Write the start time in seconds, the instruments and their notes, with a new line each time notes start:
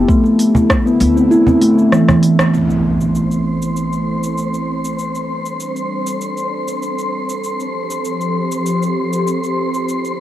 0.08 ambient pad D3 A3 E4, steel tongue drum A3, kick, cabasa
0.24 cajon slap, cabasa
0.39 open hi-hat, cabasa
0.55 cajon bass, cabasa
0.70 kick, cross-stick, cabasa
0.86 steel tongue drum B3, cabasa
1.00 upright bass D2, cajon slap, open hi-hat, cabasa
1.17 steel tongue drum C4, cabasa
1.31 steel tongue drum E4, cabasa
1.47 steel tongue drum C4, cajon bass, cabasa
1.62 steel tongue drum A3, open hi-hat, cabasa
1.78 cabasa
1.92 steel tongue drum E3, cross-stick, cabasa
2.08 steel tongue drum E3, cajon bass, cross-stick, cabasa
2.23 open hi-hat, cabasa
2.39 cross-stick, cajon slap, cabasa
2.53 ambient pad A3 E4 A4 C5, synth texture C4 C6, impact, cabasa
2.70 cabasa
3.01 cabasa
3.15 cabasa
3.31 cabasa
3.62 cabasa
3.76 cabasa
3.93 cabasa
4.23 cabasa
4.38 cabasa
4.54 cabasa
4.84 cabasa
4.98 ambient pad G3 D4 A4, cabasa
5.15 cabasa
5.45 cabasa
5.60 cabasa
5.76 cabasa
6.06 cabasa
6.21 cabasa
6.37 cabasa
6.68 cabasa
6.82 cabasa
6.98 cabasa
7.29 cabasa
7.42 ambient pad F3 C4 G4, cabasa
7.60 cabasa
7.90 cabasa
8.05 cabasa
8.21 cabasa
8.51 cabasa
8.66 cabasa
8.82 cabasa
9.13 cabasa
9.27 cabasa
9.44 cabasa
9.74 cabasa
9.88 ambient pad D3 A3 E4 F4, cabasa
10.05 cabasa